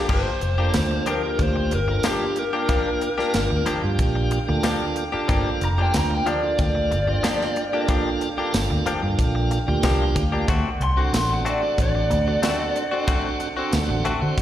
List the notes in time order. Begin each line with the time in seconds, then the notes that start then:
0.08 G1 F3 A#3 D4 G4 F5 G5, kick, crash
0.13 C5
0.41 F1, muted clean electric guitar stroke, closed hi-hat
0.57 A#3 D4 F4 G4 A4
0.74 D2, muted clean electric guitar stroke, snare, closed hi-hat, tambourine
0.91 muted clean electric guitar stroke
1.06 F3 A#3 D4 G4 A#4, closed hi-hat
1.23 A#3 D4 F4 G4, muted clean electric guitar stroke
1.39 D2, kick, closed hi-hat
1.43 C5
1.56 muted clean electric guitar stroke
1.71 G1 A#4, muted clean electric guitar stroke, closed hi-hat
1.87 A#3 D4 F4 A4, muted clean electric guitar stroke
2.03 F3 A#3 D4 G4, snare, closed hi-hat, tambourine
2.36 A#4, muted clean electric guitar stroke, closed hi-hat
2.53 A#3 D4 F4 G4 A#4
2.69 F3 A#3 D4 G4, kick, closed hi-hat
3.01 muted clean electric guitar stroke, closed hi-hat
3.18 A#3 D4 F4 G4 A#4, snare
3.34 G1, snare, closed hi-hat, tambourine
3.50 D2, muted clean electric guitar stroke
3.66 F3 A#3 D4 G4, muted fingered electric bass stroke, closed hi-hat
3.83 G2 A#3 D4 F4 G4, muted clean electric guitar stroke
3.99 A#1, kick, closed hi-hat
4.15 muted clean electric guitar stroke
4.31 muted clean electric guitar stroke, closed hi-hat
4.47 D2 A#3 D4 F4 A4, muted clean electric guitar stroke
4.63 F3 A#3 D4 G4, snare, closed hi-hat, tambourine
4.96 muted clean electric guitar stroke, closed hi-hat
5.12 A#3 D4 F4 G4 A4, muted fingered electric bass stroke
5.28 G1 F3 A#3 D4 G4, kick, closed hi-hat
5.61 F1 A#5, muted clean electric guitar stroke, closed hi-hat
5.77 A#3 D4 F4 G4 C5
5.82 G5
5.94 D2 A#5, muted clean electric guitar stroke, snare, closed hi-hat, tambourine
6.11 G5, muted clean electric guitar stroke
6.26 F3 A#3 D4 G4 D5, closed hi-hat
6.42 A#3 D4 F4 A4, muted clean electric guitar stroke
6.59 D2 D5, kick, closed hi-hat
6.75 muted clean electric guitar stroke
6.91 G1, muted clean electric guitar stroke, closed hi-hat
7.07 A#3 D4 F4 C5, muted clean electric guitar stroke
7.23 F3 A#3 D4 G4, snare, closed hi-hat, tambourine
7.41 snare
7.56 muted clean electric guitar stroke, closed hi-hat
7.72 A#3 D4 F4 G4 A4
7.88 F3 A#3 D4 G4, kick, closed hi-hat
8.21 muted clean electric guitar stroke, closed hi-hat
8.37 A#3 D4 F4 G4 A4
8.53 G1, muted clean electric guitar stroke, snare, closed hi-hat, tambourine
8.70 D2, muted clean electric guitar stroke
8.86 F3 A#3 D4 G4, muted fingered electric bass stroke, closed hi-hat
9.02 G2 A#3 D4 F4 A4, muted clean electric guitar stroke
9.19 A#1, kick, closed hi-hat
9.35 muted clean electric guitar stroke
9.51 muted clean electric guitar stroke, closed hi-hat
9.67 D2 A#3 D4 F4 G4, muted clean electric guitar stroke
9.83 C2 F3 A#3 D4 G4, kick, snare, closed hi-hat, tambourine
10.15 D2, muted clean electric guitar stroke, kick, closed hi-hat
10.31 A#3 D4 F4 G4
10.48 D2 A3 C4 F#4 C5 D5 F#5, kick, closed hi-hat
10.80 C2 C6, muted clean electric guitar stroke, closed hi-hat
10.96 C4 D4 F#4 A4
11.01 F#5
11.13 A1, muted clean electric guitar stroke, snare, closed hi-hat, tambourine
11.17 C6
11.30 F#5, muted clean electric guitar stroke
11.45 A3 C4 F#4, closed hi-hat
11.50 D5
11.61 C4 D4 F#4 A4, muted clean electric guitar stroke
11.78 A1 D5, kick, closed hi-hat
11.95 muted clean electric guitar stroke
12.10 D2, muted clean electric guitar stroke, closed hi-hat
12.26 C4 D4 F#4 A4, muted clean electric guitar stroke
12.43 A3 C4 F#4, snare, closed hi-hat, tambourine
12.76 muted clean electric guitar stroke, closed hi-hat
12.91 C4 D4 F#4 A4
13.07 A3 C4 F#4, kick, closed hi-hat
13.40 muted clean electric guitar stroke, closed hi-hat
13.56 C4 D4 F#4 A4
13.73 D2, muted clean electric guitar stroke, snare, closed hi-hat, tambourine
13.89 A1, muted clean electric guitar stroke
14.05 A3 C4 F#4, muted fingered electric bass stroke, closed hi-hat
14.21 D3 C4 D4 F#4 C5, muted clean electric guitar stroke
14.38 F#2, kick, closed hi-hat